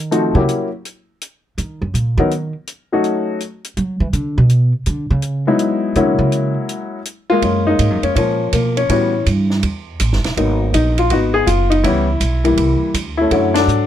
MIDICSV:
0, 0, Header, 1, 5, 480
1, 0, Start_track
1, 0, Tempo, 364964
1, 158, Time_signature, 4, 2, 24, 8
1, 9757, Tempo, 368324
1, 18158, End_track
2, 0, Start_track
2, 0, Title_t, "Grand piano"
2, 0, Program_c, 0, 0
2, 149, Note_on_c, 0, 53, 59
2, 152, Note_on_c, 0, 57, 53
2, 157, Note_on_c, 0, 60, 51
2, 158, Note_on_c, 0, 63, 53
2, 165, Note_on_c, 0, 66, 62
2, 436, Note_off_c, 0, 53, 0
2, 437, Note_off_c, 0, 57, 0
2, 439, Note_off_c, 0, 60, 0
2, 440, Note_off_c, 0, 63, 0
2, 443, Note_off_c, 0, 66, 0
2, 461, Note_on_c, 0, 54, 57
2, 462, Note_on_c, 0, 64, 52
2, 463, Note_on_c, 0, 58, 52
2, 465, Note_on_c, 0, 61, 50
2, 467, Note_on_c, 0, 67, 61
2, 883, Note_off_c, 0, 54, 0
2, 884, Note_off_c, 0, 58, 0
2, 884, Note_off_c, 0, 64, 0
2, 885, Note_off_c, 0, 61, 0
2, 886, Note_off_c, 0, 67, 0
2, 2880, Note_on_c, 0, 54, 57
2, 2884, Note_on_c, 0, 59, 54
2, 2888, Note_on_c, 0, 63, 55
2, 2889, Note_on_c, 0, 61, 50
2, 2889, Note_on_c, 0, 70, 67
2, 3025, Note_off_c, 0, 54, 0
2, 3027, Note_off_c, 0, 59, 0
2, 3028, Note_off_c, 0, 63, 0
2, 3029, Note_off_c, 0, 61, 0
2, 3029, Note_off_c, 0, 70, 0
2, 3846, Note_on_c, 0, 54, 58
2, 3850, Note_on_c, 0, 57, 50
2, 3853, Note_on_c, 0, 61, 59
2, 3854, Note_on_c, 0, 63, 56
2, 3856, Note_on_c, 0, 66, 70
2, 4451, Note_off_c, 0, 54, 0
2, 4453, Note_off_c, 0, 57, 0
2, 4454, Note_off_c, 0, 61, 0
2, 4455, Note_off_c, 0, 63, 0
2, 4456, Note_off_c, 0, 66, 0
2, 7195, Note_on_c, 0, 54, 63
2, 7197, Note_on_c, 0, 56, 61
2, 7199, Note_on_c, 0, 59, 58
2, 7205, Note_on_c, 0, 64, 72
2, 7208, Note_on_c, 0, 63, 61
2, 7805, Note_off_c, 0, 54, 0
2, 7806, Note_off_c, 0, 56, 0
2, 7807, Note_off_c, 0, 59, 0
2, 7810, Note_off_c, 0, 64, 0
2, 7812, Note_off_c, 0, 63, 0
2, 7840, Note_on_c, 0, 54, 66
2, 7842, Note_on_c, 0, 58, 62
2, 7843, Note_on_c, 0, 56, 59
2, 7845, Note_on_c, 0, 61, 62
2, 7848, Note_on_c, 0, 64, 70
2, 9180, Note_off_c, 0, 54, 0
2, 9181, Note_off_c, 0, 58, 0
2, 9182, Note_off_c, 0, 56, 0
2, 9183, Note_off_c, 0, 61, 0
2, 9184, Note_off_c, 0, 64, 0
2, 9596, Note_on_c, 0, 65, 105
2, 9622, Note_on_c, 0, 58, 84
2, 9627, Note_on_c, 0, 56, 74
2, 9753, Note_off_c, 0, 56, 0
2, 9755, Note_off_c, 0, 58, 0
2, 9763, Note_off_c, 0, 65, 0
2, 9773, Note_on_c, 0, 56, 50
2, 9774, Note_on_c, 0, 58, 43
2, 9776, Note_on_c, 0, 61, 47
2, 9782, Note_on_c, 0, 65, 57
2, 10082, Note_on_c, 0, 63, 87
2, 10090, Note_off_c, 0, 56, 0
2, 10090, Note_off_c, 0, 58, 0
2, 10109, Note_on_c, 0, 56, 59
2, 10109, Note_on_c, 0, 58, 57
2, 10522, Note_off_c, 0, 63, 0
2, 10539, Note_off_c, 0, 61, 0
2, 10558, Note_on_c, 0, 61, 75
2, 10697, Note_off_c, 0, 61, 0
2, 10716, Note_on_c, 0, 61, 69
2, 10726, Note_off_c, 0, 58, 0
2, 10745, Note_on_c, 0, 53, 51
2, 10746, Note_on_c, 0, 58, 51
2, 10996, Note_off_c, 0, 56, 0
2, 11107, Note_off_c, 0, 65, 0
2, 11184, Note_off_c, 0, 58, 0
2, 11204, Note_on_c, 0, 58, 67
2, 11210, Note_off_c, 0, 61, 0
2, 11519, Note_on_c, 0, 61, 71
2, 11522, Note_off_c, 0, 58, 0
2, 11637, Note_off_c, 0, 53, 0
2, 11670, Note_off_c, 0, 61, 0
2, 11685, Note_on_c, 0, 55, 53
2, 11689, Note_on_c, 0, 59, 47
2, 11689, Note_on_c, 0, 61, 72
2, 11690, Note_on_c, 0, 66, 60
2, 11711, Note_on_c, 0, 52, 50
2, 11962, Note_off_c, 0, 55, 0
2, 11964, Note_off_c, 0, 59, 0
2, 11965, Note_off_c, 0, 66, 0
2, 12128, Note_off_c, 0, 61, 0
2, 12600, Note_off_c, 0, 52, 0
2, 13603, Note_on_c, 0, 54, 50
2, 13606, Note_on_c, 0, 58, 44
2, 13612, Note_on_c, 0, 59, 43
2, 13612, Note_on_c, 0, 63, 54
2, 14068, Note_off_c, 0, 63, 0
2, 14088, Note_on_c, 0, 63, 75
2, 14330, Note_off_c, 0, 54, 0
2, 14331, Note_off_c, 0, 58, 0
2, 14335, Note_off_c, 0, 59, 0
2, 14404, Note_off_c, 0, 63, 0
2, 14410, Note_on_c, 0, 65, 81
2, 14567, Note_on_c, 0, 66, 82
2, 14570, Note_off_c, 0, 65, 0
2, 14591, Note_on_c, 0, 63, 57
2, 14600, Note_on_c, 0, 59, 59
2, 14866, Note_on_c, 0, 68, 94
2, 14884, Note_off_c, 0, 66, 0
2, 15030, Note_on_c, 0, 65, 86
2, 15039, Note_off_c, 0, 68, 0
2, 15318, Note_off_c, 0, 63, 0
2, 15337, Note_on_c, 0, 63, 75
2, 15357, Note_off_c, 0, 65, 0
2, 15486, Note_off_c, 0, 59, 0
2, 15513, Note_on_c, 0, 64, 83
2, 15515, Note_off_c, 0, 63, 0
2, 15524, Note_on_c, 0, 52, 62
2, 15528, Note_on_c, 0, 55, 61
2, 15530, Note_on_c, 0, 59, 57
2, 15537, Note_on_c, 0, 61, 66
2, 15803, Note_off_c, 0, 52, 0
2, 15804, Note_off_c, 0, 55, 0
2, 15806, Note_off_c, 0, 59, 0
2, 15809, Note_off_c, 0, 61, 0
2, 16291, Note_off_c, 0, 64, 0
2, 16304, Note_on_c, 0, 55, 53
2, 16305, Note_on_c, 0, 52, 61
2, 16310, Note_on_c, 0, 58, 54
2, 16311, Note_on_c, 0, 64, 63
2, 16921, Note_off_c, 0, 52, 0
2, 16921, Note_off_c, 0, 55, 0
2, 16924, Note_off_c, 0, 58, 0
2, 16924, Note_off_c, 0, 64, 0
2, 17258, Note_on_c, 0, 64, 81
2, 17310, Note_on_c, 0, 57, 58
2, 17313, Note_on_c, 0, 61, 54
2, 17429, Note_off_c, 0, 57, 0
2, 17430, Note_off_c, 0, 61, 0
2, 17441, Note_on_c, 0, 50, 59
2, 17444, Note_on_c, 0, 54, 50
2, 17448, Note_on_c, 0, 57, 54
2, 17450, Note_on_c, 0, 61, 61
2, 17722, Note_off_c, 0, 50, 0
2, 17723, Note_off_c, 0, 54, 0
2, 17726, Note_off_c, 0, 57, 0
2, 17726, Note_off_c, 0, 61, 0
2, 17738, Note_on_c, 0, 62, 91
2, 17760, Note_off_c, 0, 64, 0
2, 17785, Note_on_c, 0, 69, 55
2, 17787, Note_on_c, 0, 54, 54
2, 18158, Note_off_c, 0, 54, 0
2, 18158, Note_off_c, 0, 62, 0
2, 18158, Note_off_c, 0, 69, 0
2, 18158, End_track
3, 0, Start_track
3, 0, Title_t, "Upright bass"
3, 0, Program_c, 1, 32
3, 0, Note_on_c, 1, 51, 90
3, 421, Note_off_c, 1, 51, 0
3, 458, Note_on_c, 1, 49, 89
3, 561, Note_off_c, 1, 49, 0
3, 2074, Note_on_c, 1, 51, 82
3, 2379, Note_off_c, 1, 51, 0
3, 2388, Note_on_c, 1, 42, 66
3, 2541, Note_off_c, 1, 42, 0
3, 2549, Note_on_c, 1, 46, 68
3, 2853, Note_off_c, 1, 46, 0
3, 2861, Note_on_c, 1, 51, 91
3, 3311, Note_off_c, 1, 51, 0
3, 4958, Note_on_c, 1, 54, 79
3, 5257, Note_off_c, 1, 54, 0
3, 5265, Note_on_c, 1, 52, 81
3, 5424, Note_off_c, 1, 52, 0
3, 5432, Note_on_c, 1, 50, 77
3, 5738, Note_off_c, 1, 50, 0
3, 5757, Note_on_c, 1, 47, 90
3, 6199, Note_off_c, 1, 47, 0
3, 6401, Note_on_c, 1, 50, 72
3, 6702, Note_off_c, 1, 50, 0
3, 6714, Note_on_c, 1, 49, 87
3, 7158, Note_off_c, 1, 49, 0
3, 7835, Note_on_c, 1, 50, 90
3, 8127, Note_off_c, 1, 50, 0
3, 8135, Note_on_c, 1, 49, 87
3, 8589, Note_off_c, 1, 49, 0
3, 9761, Note_on_c, 1, 42, 67
3, 10224, Note_off_c, 1, 42, 0
3, 10240, Note_on_c, 1, 44, 78
3, 10388, Note_off_c, 1, 44, 0
3, 10388, Note_on_c, 1, 42, 47
3, 10541, Note_off_c, 1, 42, 0
3, 10548, Note_on_c, 1, 41, 59
3, 10701, Note_off_c, 1, 41, 0
3, 10720, Note_on_c, 1, 46, 66
3, 11183, Note_off_c, 1, 46, 0
3, 11201, Note_on_c, 1, 47, 74
3, 11664, Note_off_c, 1, 47, 0
3, 11676, Note_on_c, 1, 45, 70
3, 12140, Note_off_c, 1, 45, 0
3, 12161, Note_on_c, 1, 43, 85
3, 12623, Note_off_c, 1, 43, 0
3, 12641, Note_on_c, 1, 40, 64
3, 13103, Note_off_c, 1, 40, 0
3, 13119, Note_on_c, 1, 33, 81
3, 13274, Note_off_c, 1, 33, 0
3, 13274, Note_on_c, 1, 31, 48
3, 13431, Note_off_c, 1, 31, 0
3, 13439, Note_on_c, 1, 28, 62
3, 13586, Note_off_c, 1, 28, 0
3, 13604, Note_on_c, 1, 32, 72
3, 14065, Note_off_c, 1, 32, 0
3, 14081, Note_on_c, 1, 34, 80
3, 14544, Note_off_c, 1, 34, 0
3, 14557, Note_on_c, 1, 32, 68
3, 15022, Note_off_c, 1, 32, 0
3, 15039, Note_on_c, 1, 30, 78
3, 15504, Note_off_c, 1, 30, 0
3, 15513, Note_on_c, 1, 37, 68
3, 15980, Note_off_c, 1, 37, 0
3, 15991, Note_on_c, 1, 35, 79
3, 16460, Note_off_c, 1, 35, 0
3, 16476, Note_on_c, 1, 36, 67
3, 16769, Note_off_c, 1, 36, 0
3, 16955, Note_on_c, 1, 38, 72
3, 17422, Note_off_c, 1, 38, 0
3, 17434, Note_on_c, 1, 42, 73
3, 17902, Note_off_c, 1, 42, 0
3, 17909, Note_on_c, 1, 44, 78
3, 18158, Note_off_c, 1, 44, 0
3, 18158, End_track
4, 0, Start_track
4, 0, Title_t, "Muted upright bass strokes"
4, 16785, Note_on_c, 9, 29, 31
4, 16915, Note_off_c, 9, 29, 0
4, 18158, End_track
5, 0, Start_track
5, 0, Title_t, "Drums"
5, 158, Note_on_c, 9, 42, 39
5, 290, Note_off_c, 9, 42, 0
5, 639, Note_on_c, 9, 42, 41
5, 771, Note_off_c, 9, 42, 0
5, 1120, Note_on_c, 9, 42, 41
5, 1251, Note_off_c, 9, 42, 0
5, 1597, Note_on_c, 9, 42, 48
5, 1728, Note_off_c, 9, 42, 0
5, 2079, Note_on_c, 9, 42, 39
5, 2211, Note_off_c, 9, 42, 0
5, 2561, Note_on_c, 9, 42, 47
5, 2693, Note_off_c, 9, 42, 0
5, 3043, Note_on_c, 9, 42, 38
5, 3174, Note_off_c, 9, 42, 0
5, 3517, Note_on_c, 9, 42, 48
5, 3648, Note_off_c, 9, 42, 0
5, 3996, Note_on_c, 9, 42, 35
5, 4128, Note_off_c, 9, 42, 0
5, 4477, Note_on_c, 9, 42, 42
5, 4609, Note_off_c, 9, 42, 0
5, 4794, Note_on_c, 9, 42, 43
5, 4925, Note_off_c, 9, 42, 0
5, 4957, Note_on_c, 9, 42, 37
5, 5089, Note_off_c, 9, 42, 0
5, 5435, Note_on_c, 9, 42, 51
5, 5566, Note_off_c, 9, 42, 0
5, 5912, Note_on_c, 9, 42, 43
5, 6043, Note_off_c, 9, 42, 0
5, 6390, Note_on_c, 9, 42, 48
5, 6521, Note_off_c, 9, 42, 0
5, 6867, Note_on_c, 9, 42, 41
5, 6999, Note_off_c, 9, 42, 0
5, 7351, Note_on_c, 9, 42, 50
5, 7482, Note_off_c, 9, 42, 0
5, 7831, Note_on_c, 9, 42, 38
5, 7963, Note_off_c, 9, 42, 0
5, 8312, Note_on_c, 9, 42, 44
5, 8443, Note_off_c, 9, 42, 0
5, 8797, Note_on_c, 9, 42, 43
5, 8928, Note_off_c, 9, 42, 0
5, 9277, Note_on_c, 9, 42, 51
5, 9409, Note_off_c, 9, 42, 0
5, 9762, Note_on_c, 9, 51, 47
5, 9763, Note_on_c, 9, 36, 20
5, 9893, Note_off_c, 9, 36, 0
5, 9893, Note_off_c, 9, 51, 0
5, 10240, Note_on_c, 9, 44, 41
5, 10240, Note_on_c, 9, 51, 50
5, 10242, Note_on_c, 9, 36, 18
5, 10370, Note_off_c, 9, 44, 0
5, 10370, Note_off_c, 9, 51, 0
5, 10372, Note_off_c, 9, 36, 0
5, 10555, Note_on_c, 9, 51, 39
5, 10685, Note_off_c, 9, 51, 0
5, 10723, Note_on_c, 9, 36, 18
5, 10727, Note_on_c, 9, 51, 53
5, 10853, Note_off_c, 9, 36, 0
5, 10857, Note_off_c, 9, 51, 0
5, 11200, Note_on_c, 9, 44, 49
5, 11200, Note_on_c, 9, 51, 58
5, 11203, Note_on_c, 9, 36, 20
5, 11330, Note_off_c, 9, 44, 0
5, 11330, Note_off_c, 9, 51, 0
5, 11334, Note_off_c, 9, 36, 0
5, 11518, Note_on_c, 9, 51, 39
5, 11648, Note_off_c, 9, 51, 0
5, 11680, Note_on_c, 9, 51, 50
5, 11684, Note_on_c, 9, 36, 20
5, 11811, Note_off_c, 9, 51, 0
5, 11814, Note_off_c, 9, 36, 0
5, 12162, Note_on_c, 9, 44, 43
5, 12162, Note_on_c, 9, 51, 53
5, 12163, Note_on_c, 9, 36, 16
5, 12292, Note_off_c, 9, 44, 0
5, 12292, Note_off_c, 9, 51, 0
5, 12294, Note_off_c, 9, 36, 0
5, 12474, Note_on_c, 9, 38, 29
5, 12604, Note_off_c, 9, 38, 0
5, 12636, Note_on_c, 9, 51, 54
5, 12642, Note_on_c, 9, 36, 20
5, 12767, Note_off_c, 9, 51, 0
5, 12773, Note_off_c, 9, 36, 0
5, 13116, Note_on_c, 9, 44, 55
5, 13116, Note_on_c, 9, 51, 60
5, 13122, Note_on_c, 9, 36, 18
5, 13247, Note_off_c, 9, 44, 0
5, 13247, Note_off_c, 9, 51, 0
5, 13252, Note_off_c, 9, 36, 0
5, 13285, Note_on_c, 9, 38, 30
5, 13415, Note_off_c, 9, 38, 0
5, 13437, Note_on_c, 9, 51, 37
5, 13446, Note_on_c, 9, 38, 40
5, 13567, Note_off_c, 9, 51, 0
5, 13577, Note_off_c, 9, 38, 0
5, 13604, Note_on_c, 9, 36, 16
5, 13607, Note_on_c, 9, 51, 49
5, 13735, Note_off_c, 9, 36, 0
5, 13737, Note_off_c, 9, 51, 0
5, 14083, Note_on_c, 9, 36, 17
5, 14084, Note_on_c, 9, 44, 54
5, 14084, Note_on_c, 9, 51, 53
5, 14213, Note_off_c, 9, 36, 0
5, 14215, Note_off_c, 9, 44, 0
5, 14215, Note_off_c, 9, 51, 0
5, 14394, Note_on_c, 9, 51, 41
5, 14525, Note_off_c, 9, 51, 0
5, 14556, Note_on_c, 9, 51, 52
5, 14560, Note_on_c, 9, 36, 16
5, 14686, Note_off_c, 9, 51, 0
5, 14690, Note_off_c, 9, 36, 0
5, 15040, Note_on_c, 9, 36, 24
5, 15041, Note_on_c, 9, 44, 52
5, 15041, Note_on_c, 9, 51, 57
5, 15170, Note_off_c, 9, 36, 0
5, 15171, Note_off_c, 9, 44, 0
5, 15171, Note_off_c, 9, 51, 0
5, 15355, Note_on_c, 9, 51, 41
5, 15486, Note_off_c, 9, 51, 0
5, 15519, Note_on_c, 9, 36, 23
5, 15522, Note_on_c, 9, 51, 54
5, 15650, Note_off_c, 9, 36, 0
5, 15652, Note_off_c, 9, 51, 0
5, 15996, Note_on_c, 9, 44, 48
5, 15996, Note_on_c, 9, 51, 54
5, 15998, Note_on_c, 9, 36, 16
5, 16126, Note_off_c, 9, 44, 0
5, 16126, Note_off_c, 9, 51, 0
5, 16128, Note_off_c, 9, 36, 0
5, 16310, Note_on_c, 9, 51, 37
5, 16441, Note_off_c, 9, 51, 0
5, 16476, Note_on_c, 9, 51, 49
5, 16477, Note_on_c, 9, 36, 19
5, 16606, Note_off_c, 9, 51, 0
5, 16607, Note_off_c, 9, 36, 0
5, 16957, Note_on_c, 9, 36, 17
5, 16958, Note_on_c, 9, 44, 55
5, 16958, Note_on_c, 9, 51, 58
5, 17087, Note_off_c, 9, 36, 0
5, 17088, Note_off_c, 9, 44, 0
5, 17088, Note_off_c, 9, 51, 0
5, 17436, Note_on_c, 9, 36, 24
5, 17436, Note_on_c, 9, 51, 50
5, 17566, Note_off_c, 9, 36, 0
5, 17566, Note_off_c, 9, 51, 0
5, 17752, Note_on_c, 9, 51, 55
5, 17753, Note_on_c, 9, 38, 64
5, 17882, Note_off_c, 9, 51, 0
5, 17884, Note_off_c, 9, 38, 0
5, 17920, Note_on_c, 9, 44, 53
5, 18050, Note_off_c, 9, 44, 0
5, 18158, End_track
0, 0, End_of_file